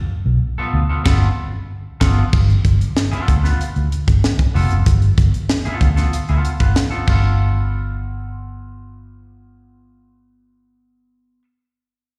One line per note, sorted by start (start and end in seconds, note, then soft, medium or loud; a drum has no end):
0.26 0.38 B1 loud
0.58 0.79 B3 medium
0.58 0.79 F4 medium
0.58 0.79 A4 medium
0.58 muted fingered electric bass stroke medium
0.73 0.86 D2 medium
0.89 1.04 B3 medium
0.89 1.04 F4 medium
0.89 1.03 A4 medium
1.04 1.27 G1 loud
1.04 1.27 B3 loud
1.04 1.27 F4 loud
1.04 1.27 A4 loud
1.04 kick loud
1.04 snare loud
1.04 crash medium
2.00 2.22 G1 loud
2.00 2.23 B3 medium
2.00 2.22 F4 loud
2.00 2.22 A4 medium
2.00 kick loud
2.00 snare loud
2.00 crash medium
2.33 2.57 G1 loud
2.33 kick loud
2.33 crash loud
2.50 closed hi-hat soft
2.65 2.76 G1 medium
2.65 kick medium
2.65 closed hi-hat medium
2.81 closed hi-hat medium
2.97 snare loud
3.11 3.33 B3 medium
3.11 3.33 F4 medium
3.11 3.32 A4 loud
3.11 muted fingered electric bass stroke soft
3.11 closed hi-hat soft
3.28 3.52 D2 loud
3.28 kick medium
3.28 closed hi-hat medium
3.44 3.60 B3 medium
3.44 3.60 F4 medium
3.44 3.60 B4 medium
3.44 snare soft
3.44 closed hi-hat soft
3.60 muted fingered electric bass stroke soft
3.60 closed hi-hat medium
3.76 3.88 D2 medium
3.76 closed hi-hat soft
3.92 closed hi-hat medium
4.07 4.19 G1 medium
4.07 kick loud
4.07 closed hi-hat medium
4.24 snare loud
4.39 kick medium
4.39 closed hi-hat soft
4.54 4.67 F1 loud
4.54 4.75 B3 medium
4.54 4.75 F4 medium
4.54 4.76 A4 medium
4.54 open hi-hat medium
4.71 4.83 F#1 medium
4.71 closed hi-hat medium
4.86 5.10 G1 loud
4.86 kick loud
4.86 closed hi-hat loud
5.02 closed hi-hat soft
5.18 5.30 G1 loud
5.18 kick loud
5.18 closed hi-hat medium
5.34 closed hi-hat medium
5.50 snare loud
5.65 5.86 B3 medium
5.65 5.86 F4 medium
5.65 5.86 A4 medium
5.65 muted fingered electric bass stroke soft
5.65 closed hi-hat soft
5.81 6.05 D2 loud
5.81 kick medium
5.81 closed hi-hat medium
5.96 6.13 B3 medium
5.96 6.13 F4 medium
5.96 6.13 A4 medium
5.96 snare soft
5.96 closed hi-hat soft
6.13 muted fingered electric bass stroke soft
6.13 closed hi-hat medium
6.28 6.41 D2 medium
6.28 6.50 B3 medium
6.28 6.50 F4 medium
6.28 6.49 A4 medium
6.28 closed hi-hat soft
6.45 closed hi-hat medium
6.60 6.72 G1 medium
6.60 6.77 B3 medium
6.60 6.77 F4 soft
6.60 6.76 B4 medium
6.60 kick loud
6.60 closed hi-hat medium
6.76 snare loud
6.91 7.06 B3 medium
6.91 7.08 F4 medium
6.91 7.07 A4 medium
6.91 closed hi-hat soft
7.07 11.38 G1 loud
7.07 11.42 B3 medium
7.07 11.43 F4 medium
7.07 kick medium
7.07 crash medium
7.12 11.44 A4 medium